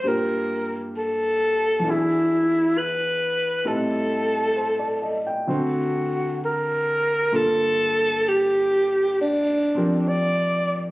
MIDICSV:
0, 0, Header, 1, 3, 480
1, 0, Start_track
1, 0, Key_signature, -2, "minor"
1, 0, Tempo, 900901
1, 25, Time_signature, 4, 2, 24, 8
1, 1944, Tempo, 913242
1, 5761, End_track
2, 0, Start_track
2, 0, Title_t, "Alto saxophone"
2, 0, Program_c, 0, 65
2, 42, Note_on_c, 0, 70, 72
2, 421, Note_off_c, 0, 70, 0
2, 517, Note_on_c, 0, 69, 69
2, 1012, Note_on_c, 0, 64, 64
2, 1020, Note_off_c, 0, 69, 0
2, 1480, Note_on_c, 0, 71, 64
2, 1488, Note_off_c, 0, 64, 0
2, 1959, Note_on_c, 0, 69, 64
2, 1967, Note_off_c, 0, 71, 0
2, 2819, Note_off_c, 0, 69, 0
2, 2930, Note_on_c, 0, 66, 50
2, 3380, Note_off_c, 0, 66, 0
2, 3417, Note_on_c, 0, 70, 65
2, 3893, Note_on_c, 0, 69, 79
2, 3901, Note_off_c, 0, 70, 0
2, 4380, Note_on_c, 0, 67, 81
2, 4387, Note_off_c, 0, 69, 0
2, 4845, Note_off_c, 0, 67, 0
2, 4868, Note_on_c, 0, 62, 68
2, 5325, Note_on_c, 0, 74, 79
2, 5333, Note_off_c, 0, 62, 0
2, 5702, Note_off_c, 0, 74, 0
2, 5761, End_track
3, 0, Start_track
3, 0, Title_t, "Grand piano"
3, 0, Program_c, 1, 0
3, 0, Control_c, 1, 64, 127
3, 19, Note_on_c, 1, 43, 37
3, 22, Note_on_c, 1, 55, 34
3, 31, Note_on_c, 1, 58, 33
3, 32, Control_c, 1, 64, 0
3, 36, Note_on_c, 1, 65, 31
3, 44, Note_on_c, 1, 67, 38
3, 112, Control_c, 1, 64, 127
3, 957, Note_on_c, 1, 40, 40
3, 970, Note_on_c, 1, 52, 33
3, 980, Note_off_c, 1, 43, 0
3, 982, Note_off_c, 1, 55, 0
3, 986, Note_on_c, 1, 62, 35
3, 987, Note_off_c, 1, 58, 0
3, 989, Note_off_c, 1, 65, 0
3, 990, Control_c, 1, 64, 0
3, 993, Note_off_c, 1, 67, 0
3, 1003, Note_on_c, 1, 66, 35
3, 1011, Note_on_c, 1, 68, 39
3, 1094, Control_c, 1, 64, 127
3, 1930, Note_off_c, 1, 40, 0
3, 1937, Note_off_c, 1, 52, 0
3, 1944, Note_on_c, 1, 45, 34
3, 1944, Note_on_c, 1, 60, 29
3, 1945, Note_off_c, 1, 62, 0
3, 1945, Note_on_c, 1, 55, 31
3, 1948, Note_on_c, 1, 63, 31
3, 1949, Control_c, 1, 64, 0
3, 1951, Note_on_c, 1, 69, 41
3, 1953, Note_off_c, 1, 66, 0
3, 1957, Note_off_c, 1, 68, 0
3, 2056, Control_c, 1, 64, 127
3, 2423, Note_on_c, 1, 72, 30
3, 2545, Note_on_c, 1, 74, 29
3, 2650, Note_off_c, 1, 72, 0
3, 2665, Note_on_c, 1, 75, 35
3, 2752, Note_off_c, 1, 74, 0
3, 2794, Note_on_c, 1, 79, 34
3, 2811, Note_off_c, 1, 75, 0
3, 2897, Note_off_c, 1, 60, 0
3, 2903, Note_off_c, 1, 45, 0
3, 2904, Note_off_c, 1, 55, 0
3, 2904, Note_on_c, 1, 38, 37
3, 2905, Note_off_c, 1, 63, 0
3, 2905, Note_on_c, 1, 60, 31
3, 2907, Note_off_c, 1, 69, 0
3, 2908, Note_on_c, 1, 50, 36
3, 2909, Control_c, 1, 64, 0
3, 2910, Note_on_c, 1, 66, 32
3, 2910, Note_on_c, 1, 72, 40
3, 2957, Note_off_c, 1, 79, 0
3, 2991, Control_c, 1, 64, 127
3, 3869, Note_off_c, 1, 50, 0
3, 3872, Note_off_c, 1, 38, 0
3, 3873, Note_off_c, 1, 60, 0
3, 3873, Note_on_c, 1, 43, 36
3, 3875, Note_off_c, 1, 66, 0
3, 3876, Note_off_c, 1, 72, 0
3, 3876, Note_on_c, 1, 50, 31
3, 3876, Note_on_c, 1, 58, 33
3, 3879, Control_c, 1, 64, 0
3, 3880, Note_on_c, 1, 69, 34
3, 3881, Note_on_c, 1, 65, 32
3, 3968, Control_c, 1, 64, 127
3, 5150, Note_on_c, 1, 53, 34
3, 5157, Note_on_c, 1, 60, 32
3, 5161, Note_on_c, 1, 67, 33
3, 5166, Note_on_c, 1, 70, 38
3, 5761, Note_off_c, 1, 43, 0
3, 5761, Note_off_c, 1, 50, 0
3, 5761, Note_off_c, 1, 53, 0
3, 5761, Note_off_c, 1, 58, 0
3, 5761, Note_off_c, 1, 60, 0
3, 5761, Note_off_c, 1, 65, 0
3, 5761, Note_off_c, 1, 67, 0
3, 5761, Note_off_c, 1, 69, 0
3, 5761, Note_off_c, 1, 70, 0
3, 5761, End_track
0, 0, End_of_file